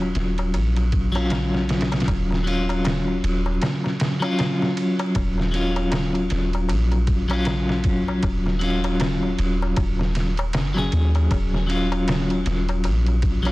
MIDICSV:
0, 0, Header, 1, 5, 480
1, 0, Start_track
1, 0, Key_signature, -6, "minor"
1, 0, Tempo, 769231
1, 1300, Time_signature, 4, 2, 24, 8
1, 8435, End_track
2, 0, Start_track
2, 0, Title_t, "Clean electric guitar"
2, 0, Program_c, 0, 27
2, 0, Note_on_c, 0, 54, 84
2, 0, Note_on_c, 0, 61, 77
2, 0, Note_on_c, 0, 65, 84
2, 680, Note_off_c, 0, 54, 0
2, 687, Note_off_c, 0, 61, 0
2, 693, Note_off_c, 0, 65, 0
2, 700, Note_on_c, 0, 54, 90
2, 715, Note_on_c, 0, 61, 81
2, 725, Note_on_c, 0, 65, 102
2, 1506, Note_off_c, 0, 54, 0
2, 1513, Note_off_c, 0, 61, 0
2, 1518, Note_off_c, 0, 65, 0
2, 1522, Note_on_c, 0, 54, 82
2, 1536, Note_on_c, 0, 61, 71
2, 1547, Note_on_c, 0, 65, 89
2, 2598, Note_off_c, 0, 54, 0
2, 2605, Note_off_c, 0, 61, 0
2, 2610, Note_off_c, 0, 65, 0
2, 2621, Note_on_c, 0, 54, 90
2, 2633, Note_on_c, 0, 61, 81
2, 2647, Note_on_c, 0, 65, 96
2, 3426, Note_off_c, 0, 54, 0
2, 3432, Note_off_c, 0, 61, 0
2, 3439, Note_off_c, 0, 65, 0
2, 3442, Note_on_c, 0, 54, 83
2, 3457, Note_on_c, 0, 61, 74
2, 3468, Note_on_c, 0, 65, 92
2, 4518, Note_off_c, 0, 54, 0
2, 4525, Note_off_c, 0, 61, 0
2, 4531, Note_off_c, 0, 65, 0
2, 4545, Note_on_c, 0, 54, 92
2, 4559, Note_on_c, 0, 61, 87
2, 4573, Note_on_c, 0, 65, 102
2, 5348, Note_off_c, 0, 54, 0
2, 5355, Note_off_c, 0, 61, 0
2, 5362, Note_off_c, 0, 65, 0
2, 5363, Note_on_c, 0, 54, 85
2, 5377, Note_on_c, 0, 61, 78
2, 5389, Note_on_c, 0, 65, 92
2, 6438, Note_off_c, 0, 54, 0
2, 6445, Note_off_c, 0, 61, 0
2, 6451, Note_off_c, 0, 65, 0
2, 6704, Note_on_c, 0, 54, 62
2, 6715, Note_on_c, 0, 61, 57
2, 6729, Note_on_c, 0, 68, 72
2, 7268, Note_off_c, 0, 54, 0
2, 7273, Note_off_c, 0, 61, 0
2, 7281, Note_off_c, 0, 68, 0
2, 7281, Note_on_c, 0, 54, 79
2, 7293, Note_on_c, 0, 61, 73
2, 7307, Note_on_c, 0, 65, 86
2, 8357, Note_off_c, 0, 54, 0
2, 8363, Note_off_c, 0, 61, 0
2, 8370, Note_off_c, 0, 65, 0
2, 8379, Note_on_c, 0, 54, 90
2, 8394, Note_on_c, 0, 61, 88
2, 8405, Note_on_c, 0, 65, 102
2, 8435, Note_off_c, 0, 54, 0
2, 8435, Note_off_c, 0, 61, 0
2, 8435, Note_off_c, 0, 65, 0
2, 8435, End_track
3, 0, Start_track
3, 0, Title_t, "808-style bass"
3, 0, Program_c, 1, 38
3, 0, Note_on_c, 1, 27, 91
3, 79, Note_off_c, 1, 27, 0
3, 97, Note_on_c, 1, 27, 87
3, 338, Note_on_c, 1, 34, 105
3, 347, Note_off_c, 1, 27, 0
3, 1280, Note_off_c, 1, 34, 0
3, 1296, Note_on_c, 1, 27, 89
3, 1999, Note_off_c, 1, 27, 0
3, 2018, Note_on_c, 1, 27, 84
3, 2235, Note_off_c, 1, 27, 0
3, 3218, Note_on_c, 1, 27, 93
3, 3920, Note_off_c, 1, 27, 0
3, 3939, Note_on_c, 1, 27, 84
3, 4177, Note_on_c, 1, 34, 104
3, 4187, Note_off_c, 1, 27, 0
3, 5119, Note_off_c, 1, 34, 0
3, 5134, Note_on_c, 1, 27, 93
3, 5838, Note_off_c, 1, 27, 0
3, 5856, Note_on_c, 1, 27, 89
3, 6074, Note_off_c, 1, 27, 0
3, 6097, Note_on_c, 1, 27, 97
3, 6579, Note_on_c, 1, 30, 92
3, 6588, Note_off_c, 1, 27, 0
3, 6795, Note_off_c, 1, 30, 0
3, 6820, Note_on_c, 1, 39, 80
3, 7036, Note_off_c, 1, 39, 0
3, 7056, Note_on_c, 1, 27, 93
3, 7759, Note_off_c, 1, 27, 0
3, 7777, Note_on_c, 1, 27, 88
3, 8022, Note_on_c, 1, 34, 110
3, 8031, Note_off_c, 1, 27, 0
3, 8435, Note_off_c, 1, 34, 0
3, 8435, End_track
4, 0, Start_track
4, 0, Title_t, "Darbuka"
4, 11, Note_on_c, 9, 63, 39
4, 74, Note_off_c, 9, 63, 0
4, 243, Note_on_c, 9, 63, 69
4, 305, Note_off_c, 9, 63, 0
4, 337, Note_on_c, 9, 63, 58
4, 400, Note_off_c, 9, 63, 0
4, 479, Note_on_c, 9, 63, 33
4, 541, Note_off_c, 9, 63, 0
4, 721, Note_on_c, 9, 63, 77
4, 784, Note_off_c, 9, 63, 0
4, 827, Note_on_c, 9, 63, 61
4, 889, Note_off_c, 9, 63, 0
4, 960, Note_on_c, 9, 63, 32
4, 1022, Note_off_c, 9, 63, 0
4, 1197, Note_on_c, 9, 63, 69
4, 1260, Note_off_c, 9, 63, 0
4, 1297, Note_on_c, 9, 63, 69
4, 1360, Note_off_c, 9, 63, 0
4, 1439, Note_on_c, 9, 63, 35
4, 1501, Note_off_c, 9, 63, 0
4, 1680, Note_on_c, 9, 63, 72
4, 1742, Note_off_c, 9, 63, 0
4, 1776, Note_on_c, 9, 63, 65
4, 1838, Note_off_c, 9, 63, 0
4, 1920, Note_on_c, 9, 63, 36
4, 1982, Note_off_c, 9, 63, 0
4, 2159, Note_on_c, 9, 63, 61
4, 2221, Note_off_c, 9, 63, 0
4, 2262, Note_on_c, 9, 63, 59
4, 2325, Note_off_c, 9, 63, 0
4, 2397, Note_on_c, 9, 63, 41
4, 2459, Note_off_c, 9, 63, 0
4, 2635, Note_on_c, 9, 63, 81
4, 2697, Note_off_c, 9, 63, 0
4, 2738, Note_on_c, 9, 63, 59
4, 2801, Note_off_c, 9, 63, 0
4, 2884, Note_on_c, 9, 63, 41
4, 2946, Note_off_c, 9, 63, 0
4, 3117, Note_on_c, 9, 63, 80
4, 3179, Note_off_c, 9, 63, 0
4, 3219, Note_on_c, 9, 63, 69
4, 3281, Note_off_c, 9, 63, 0
4, 3355, Note_on_c, 9, 63, 35
4, 3417, Note_off_c, 9, 63, 0
4, 3596, Note_on_c, 9, 63, 74
4, 3658, Note_off_c, 9, 63, 0
4, 3694, Note_on_c, 9, 63, 62
4, 3756, Note_off_c, 9, 63, 0
4, 3833, Note_on_c, 9, 63, 37
4, 3895, Note_off_c, 9, 63, 0
4, 4084, Note_on_c, 9, 63, 66
4, 4147, Note_off_c, 9, 63, 0
4, 4172, Note_on_c, 9, 63, 61
4, 4234, Note_off_c, 9, 63, 0
4, 4316, Note_on_c, 9, 63, 40
4, 4378, Note_off_c, 9, 63, 0
4, 4561, Note_on_c, 9, 63, 83
4, 4623, Note_off_c, 9, 63, 0
4, 4658, Note_on_c, 9, 63, 69
4, 4721, Note_off_c, 9, 63, 0
4, 4803, Note_on_c, 9, 63, 36
4, 4865, Note_off_c, 9, 63, 0
4, 5044, Note_on_c, 9, 63, 67
4, 5106, Note_off_c, 9, 63, 0
4, 5138, Note_on_c, 9, 63, 71
4, 5201, Note_off_c, 9, 63, 0
4, 5277, Note_on_c, 9, 63, 38
4, 5340, Note_off_c, 9, 63, 0
4, 5519, Note_on_c, 9, 63, 76
4, 5581, Note_off_c, 9, 63, 0
4, 5619, Note_on_c, 9, 63, 65
4, 5681, Note_off_c, 9, 63, 0
4, 5758, Note_on_c, 9, 63, 37
4, 5821, Note_off_c, 9, 63, 0
4, 6005, Note_on_c, 9, 63, 61
4, 6068, Note_off_c, 9, 63, 0
4, 6096, Note_on_c, 9, 63, 71
4, 6159, Note_off_c, 9, 63, 0
4, 6235, Note_on_c, 9, 63, 39
4, 6297, Note_off_c, 9, 63, 0
4, 6483, Note_on_c, 9, 63, 83
4, 6545, Note_off_c, 9, 63, 0
4, 6579, Note_on_c, 9, 63, 59
4, 6641, Note_off_c, 9, 63, 0
4, 6720, Note_on_c, 9, 63, 42
4, 6782, Note_off_c, 9, 63, 0
4, 6960, Note_on_c, 9, 63, 68
4, 7022, Note_off_c, 9, 63, 0
4, 7059, Note_on_c, 9, 63, 68
4, 7122, Note_off_c, 9, 63, 0
4, 7201, Note_on_c, 9, 63, 37
4, 7263, Note_off_c, 9, 63, 0
4, 7437, Note_on_c, 9, 63, 77
4, 7499, Note_off_c, 9, 63, 0
4, 7539, Note_on_c, 9, 63, 55
4, 7602, Note_off_c, 9, 63, 0
4, 7681, Note_on_c, 9, 63, 36
4, 7744, Note_off_c, 9, 63, 0
4, 7920, Note_on_c, 9, 63, 72
4, 7982, Note_off_c, 9, 63, 0
4, 8018, Note_on_c, 9, 63, 61
4, 8081, Note_off_c, 9, 63, 0
4, 8164, Note_on_c, 9, 63, 36
4, 8226, Note_off_c, 9, 63, 0
4, 8401, Note_on_c, 9, 63, 73
4, 8435, Note_off_c, 9, 63, 0
4, 8435, End_track
5, 0, Start_track
5, 0, Title_t, "Drums"
5, 94, Note_on_c, 9, 51, 63
5, 103, Note_on_c, 9, 38, 50
5, 157, Note_off_c, 9, 51, 0
5, 165, Note_off_c, 9, 38, 0
5, 236, Note_on_c, 9, 51, 36
5, 299, Note_off_c, 9, 51, 0
5, 336, Note_on_c, 9, 51, 75
5, 398, Note_off_c, 9, 51, 0
5, 477, Note_on_c, 9, 51, 42
5, 539, Note_off_c, 9, 51, 0
5, 575, Note_on_c, 9, 51, 62
5, 577, Note_on_c, 9, 36, 91
5, 637, Note_off_c, 9, 51, 0
5, 640, Note_off_c, 9, 36, 0
5, 717, Note_on_c, 9, 51, 41
5, 780, Note_off_c, 9, 51, 0
5, 813, Note_on_c, 9, 51, 76
5, 821, Note_on_c, 9, 38, 107
5, 875, Note_off_c, 9, 51, 0
5, 884, Note_off_c, 9, 38, 0
5, 963, Note_on_c, 9, 38, 49
5, 1026, Note_off_c, 9, 38, 0
5, 1055, Note_on_c, 9, 51, 58
5, 1064, Note_on_c, 9, 38, 81
5, 1117, Note_off_c, 9, 51, 0
5, 1126, Note_off_c, 9, 38, 0
5, 1128, Note_on_c, 9, 51, 58
5, 1137, Note_on_c, 9, 38, 86
5, 1191, Note_off_c, 9, 51, 0
5, 1199, Note_off_c, 9, 38, 0
5, 1200, Note_on_c, 9, 51, 58
5, 1208, Note_on_c, 9, 38, 80
5, 1250, Note_off_c, 9, 51, 0
5, 1250, Note_on_c, 9, 51, 57
5, 1259, Note_off_c, 9, 38, 0
5, 1259, Note_on_c, 9, 38, 81
5, 1297, Note_on_c, 9, 36, 102
5, 1298, Note_off_c, 9, 51, 0
5, 1298, Note_on_c, 9, 51, 83
5, 1322, Note_off_c, 9, 38, 0
5, 1360, Note_off_c, 9, 36, 0
5, 1360, Note_off_c, 9, 51, 0
5, 1450, Note_on_c, 9, 38, 41
5, 1513, Note_off_c, 9, 38, 0
5, 1543, Note_on_c, 9, 51, 65
5, 1605, Note_off_c, 9, 51, 0
5, 1684, Note_on_c, 9, 51, 41
5, 1746, Note_off_c, 9, 51, 0
5, 1779, Note_on_c, 9, 51, 82
5, 1788, Note_on_c, 9, 38, 103
5, 1841, Note_off_c, 9, 51, 0
5, 1850, Note_off_c, 9, 38, 0
5, 2022, Note_on_c, 9, 51, 63
5, 2084, Note_off_c, 9, 51, 0
5, 2256, Note_on_c, 9, 51, 75
5, 2265, Note_on_c, 9, 38, 96
5, 2319, Note_off_c, 9, 51, 0
5, 2327, Note_off_c, 9, 38, 0
5, 2408, Note_on_c, 9, 38, 45
5, 2470, Note_off_c, 9, 38, 0
5, 2495, Note_on_c, 9, 51, 79
5, 2504, Note_on_c, 9, 38, 99
5, 2557, Note_off_c, 9, 51, 0
5, 2566, Note_off_c, 9, 38, 0
5, 2636, Note_on_c, 9, 51, 38
5, 2698, Note_off_c, 9, 51, 0
5, 2737, Note_on_c, 9, 51, 77
5, 2746, Note_on_c, 9, 38, 109
5, 2799, Note_off_c, 9, 51, 0
5, 2808, Note_off_c, 9, 38, 0
5, 2885, Note_on_c, 9, 38, 48
5, 2947, Note_off_c, 9, 38, 0
5, 2977, Note_on_c, 9, 51, 67
5, 3039, Note_off_c, 9, 51, 0
5, 3116, Note_on_c, 9, 51, 39
5, 3178, Note_off_c, 9, 51, 0
5, 3213, Note_on_c, 9, 51, 77
5, 3216, Note_on_c, 9, 36, 94
5, 3276, Note_off_c, 9, 51, 0
5, 3278, Note_off_c, 9, 36, 0
5, 3367, Note_on_c, 9, 38, 41
5, 3430, Note_off_c, 9, 38, 0
5, 3456, Note_on_c, 9, 51, 64
5, 3519, Note_off_c, 9, 51, 0
5, 3595, Note_on_c, 9, 51, 41
5, 3658, Note_off_c, 9, 51, 0
5, 3692, Note_on_c, 9, 51, 84
5, 3700, Note_on_c, 9, 38, 107
5, 3754, Note_off_c, 9, 51, 0
5, 3763, Note_off_c, 9, 38, 0
5, 3838, Note_on_c, 9, 51, 39
5, 3900, Note_off_c, 9, 51, 0
5, 3932, Note_on_c, 9, 51, 59
5, 3940, Note_on_c, 9, 38, 51
5, 3994, Note_off_c, 9, 51, 0
5, 4003, Note_off_c, 9, 38, 0
5, 4076, Note_on_c, 9, 51, 38
5, 4139, Note_off_c, 9, 51, 0
5, 4177, Note_on_c, 9, 51, 84
5, 4239, Note_off_c, 9, 51, 0
5, 4316, Note_on_c, 9, 51, 40
5, 4378, Note_off_c, 9, 51, 0
5, 4412, Note_on_c, 9, 51, 64
5, 4415, Note_on_c, 9, 36, 87
5, 4475, Note_off_c, 9, 51, 0
5, 4478, Note_off_c, 9, 36, 0
5, 4553, Note_on_c, 9, 51, 42
5, 4616, Note_off_c, 9, 51, 0
5, 4650, Note_on_c, 9, 51, 80
5, 4659, Note_on_c, 9, 38, 113
5, 4713, Note_off_c, 9, 51, 0
5, 4721, Note_off_c, 9, 38, 0
5, 4800, Note_on_c, 9, 38, 56
5, 4863, Note_off_c, 9, 38, 0
5, 4891, Note_on_c, 9, 51, 67
5, 4895, Note_on_c, 9, 36, 91
5, 4953, Note_off_c, 9, 51, 0
5, 4957, Note_off_c, 9, 36, 0
5, 5133, Note_on_c, 9, 51, 78
5, 5135, Note_on_c, 9, 36, 103
5, 5195, Note_off_c, 9, 51, 0
5, 5198, Note_off_c, 9, 36, 0
5, 5282, Note_on_c, 9, 38, 43
5, 5345, Note_off_c, 9, 38, 0
5, 5374, Note_on_c, 9, 51, 70
5, 5437, Note_off_c, 9, 51, 0
5, 5516, Note_on_c, 9, 51, 42
5, 5578, Note_off_c, 9, 51, 0
5, 5615, Note_on_c, 9, 51, 88
5, 5623, Note_on_c, 9, 38, 116
5, 5677, Note_off_c, 9, 51, 0
5, 5686, Note_off_c, 9, 38, 0
5, 5856, Note_on_c, 9, 51, 60
5, 5919, Note_off_c, 9, 51, 0
5, 6093, Note_on_c, 9, 51, 80
5, 6096, Note_on_c, 9, 36, 99
5, 6155, Note_off_c, 9, 51, 0
5, 6158, Note_off_c, 9, 36, 0
5, 6245, Note_on_c, 9, 38, 44
5, 6307, Note_off_c, 9, 38, 0
5, 6334, Note_on_c, 9, 51, 68
5, 6343, Note_on_c, 9, 38, 46
5, 6396, Note_off_c, 9, 51, 0
5, 6405, Note_off_c, 9, 38, 0
5, 6473, Note_on_c, 9, 51, 39
5, 6536, Note_off_c, 9, 51, 0
5, 6572, Note_on_c, 9, 51, 86
5, 6581, Note_on_c, 9, 38, 111
5, 6635, Note_off_c, 9, 51, 0
5, 6643, Note_off_c, 9, 38, 0
5, 6726, Note_on_c, 9, 38, 50
5, 6788, Note_off_c, 9, 38, 0
5, 6815, Note_on_c, 9, 51, 66
5, 6877, Note_off_c, 9, 51, 0
5, 6956, Note_on_c, 9, 51, 41
5, 7019, Note_off_c, 9, 51, 0
5, 7055, Note_on_c, 9, 51, 81
5, 7056, Note_on_c, 9, 36, 97
5, 7118, Note_off_c, 9, 51, 0
5, 7119, Note_off_c, 9, 36, 0
5, 7203, Note_on_c, 9, 38, 44
5, 7266, Note_off_c, 9, 38, 0
5, 7298, Note_on_c, 9, 51, 69
5, 7361, Note_off_c, 9, 51, 0
5, 7439, Note_on_c, 9, 51, 39
5, 7501, Note_off_c, 9, 51, 0
5, 7536, Note_on_c, 9, 51, 91
5, 7544, Note_on_c, 9, 38, 114
5, 7598, Note_off_c, 9, 51, 0
5, 7607, Note_off_c, 9, 38, 0
5, 7677, Note_on_c, 9, 51, 39
5, 7739, Note_off_c, 9, 51, 0
5, 7774, Note_on_c, 9, 51, 61
5, 7783, Note_on_c, 9, 38, 52
5, 7837, Note_off_c, 9, 51, 0
5, 7845, Note_off_c, 9, 38, 0
5, 7916, Note_on_c, 9, 51, 38
5, 7979, Note_off_c, 9, 51, 0
5, 8011, Note_on_c, 9, 51, 78
5, 8073, Note_off_c, 9, 51, 0
5, 8152, Note_on_c, 9, 51, 41
5, 8215, Note_off_c, 9, 51, 0
5, 8251, Note_on_c, 9, 51, 68
5, 8254, Note_on_c, 9, 36, 84
5, 8313, Note_off_c, 9, 51, 0
5, 8317, Note_off_c, 9, 36, 0
5, 8394, Note_on_c, 9, 51, 43
5, 8435, Note_off_c, 9, 51, 0
5, 8435, End_track
0, 0, End_of_file